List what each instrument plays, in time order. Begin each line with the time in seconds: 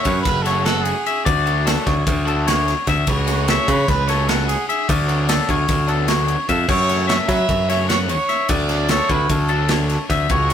Already playing: overdriven electric guitar F#3 A3 C#4 F#4
0.01 trumpet C#5, ride
0.05 picked electric bass F#2, clean electric guitar B4, kick
0.22 picked electric bass F#1, trumpet B4, kick, snare, ride
0.42 overdriven electric guitar F#4, trumpet A4, ride
0.46 overdriven electric guitar F#3 A3 C#4, clean electric guitar C#5, snare
0.64 overdriven electric guitar F#3 A3 C#4 F#4, trumpet A4, clean electric guitar F#5, snare, ride
0.83 trumpet G#4, ride
1.06 clean electric guitar E5, ride
1.25 picked electric bass D2, trumpet F#4, clean electric guitar D5, kick, ride
1.46 overdriven electric guitar F#3 A3 D4 F#4, ride
1.65 overdriven electric guitar F#3 A3 D4 F#4, clean electric guitar A4, snare, ride
1.86 picked electric bass D2, clean electric guitar C#5, kick, snare, ride
2.07 picked electric bass D2, kick, ride
2.26 overdriven electric guitar F#3 A3 D4 F#4, clean electric guitar A4, ride
2.45 overdriven electric guitar F#3 A3 D4 F#4, clean electric guitar C#5, snare, ride
2.68 snare, ride
2.87 picked electric bass D2, clean electric guitar E5, kick, snare, ride
3.07 picked electric bass C#2, trumpet F#4, clean electric guitar C#5, kick, ride
3.27 overdriven electric guitar C#3 F#3 A3 C#4, snare, ride
3.47 overdriven electric guitar C#3 F#3 A3 C#4, trumpet C#5, clean electric guitar E5, snare, ride
3.68 picked electric bass C#3, clean electric guitar B4, kick, ride
3.88 picked electric bass C#2, trumpet B4, kick, snare, ride
4.08 overdriven electric guitar C#3 F#3 A3 C#4, trumpet A4, clean electric guitar C#5, snare, ride
4.27 overdriven electric guitar C#3 F#3 A3 C#4, trumpet A4, clean electric guitar F#5, snare, ride
4.47 trumpet G#4, snare, ride
4.68 trumpet G#4, clean electric guitar E5, ride
4.88 picked electric bass D2, trumpet F#4, clean electric guitar D5, kick, ride
5.09 overdriven electric guitar D3 F#3 B3 D4, ride
5.27 overdriven electric guitar D3 F#3 B3 D4, clean electric guitar A4, snare, ride
5.49 picked electric bass D2, clean electric guitar C#5, kick, ride
5.68 picked electric bass D2, kick, snare, ride
5.88 overdriven electric guitar D3 F#3 B3 D4, clean electric guitar A4, ride
6.08 overdriven electric guitar D3 F#3 B3 D4, clean electric guitar C#5, snare, ride
6.28 ride
6.49 picked electric bass F2, trumpet A4, clean electric guitar E5, kick, ride
6.68 picked electric bass F#2, trumpet C#5, clean electric guitar C#5, kick, crash
6.89 overdriven electric guitar C#3 F#3 A3 C#4, snare, ride
7.07 overdriven electric guitar C#3 F#3 A3 C#4, trumpet C#5, clean electric guitar E5, snare, ride
7.28 picked electric bass F#3, clean electric guitar B4, trumpet E5, kick, snare, ride
7.49 picked electric bass F#2, kick, ride
7.69 overdriven electric guitar C#3 F#3 A3 C#4, clean electric guitar C#5, trumpet E5, snare, ride
7.88 overdriven electric guitar C#3 F#3 A3 C#4, trumpet C#5, clean electric guitar F#5, snare, ride
8.09 trumpet C#5, ride
8.29 clean electric guitar E5, snare, ride
8.49 picked electric bass D2, clean electric guitar D5, trumpet D5, kick, ride
8.69 overdriven electric guitar D3 F#3 A3 D4, snare, ride
8.89 overdriven electric guitar D3 F#3 A3 D4, clean electric guitar A4, trumpet C#5, snare, ride
9.09 picked electric bass D2, trumpet B4, clean electric guitar C#5, kick, ride
9.30 picked electric bass D2, trumpet A4, kick, ride
9.48 overdriven electric guitar D3 F#3 A3 D4, clean electric guitar A4, ride
9.69 overdriven electric guitar D3 F#3 A3 D4, clean electric guitar C#5, snare, ride
9.89 snare, ride
10.10 picked electric bass D2, clean electric guitar E5, kick, snare, ride
10.29 picked electric bass C#2, trumpet F#4, clean electric guitar C#5, kick, ride
10.50 overdriven electric guitar A3 C#4, ride